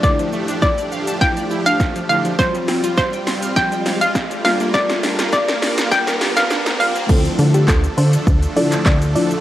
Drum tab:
CC |----------------|----------------|----------------|x---------------|
HH |-x-x-x-x-x-x-x-x|-xox-xox-xox-xox|-xox-xox-xox-xox|-xox-xox-xox-xox|
SH |xxxxxxxxxxxxxxxx|xxxxxxxxxxxxxxxx|xxxxxxxxxxxxxxxx|xxxxxxxxxxxxxxxx|
CP |----------------|----------------|----------------|----x------xx---|
SD |o---o---o---o---|o-o-o-o-o-o-o-o-|oooooooooooooo--|----o-------o---|
BD |o---o---o---o---|o---o---o---o---|o---o---o-------|o---o---o---o---|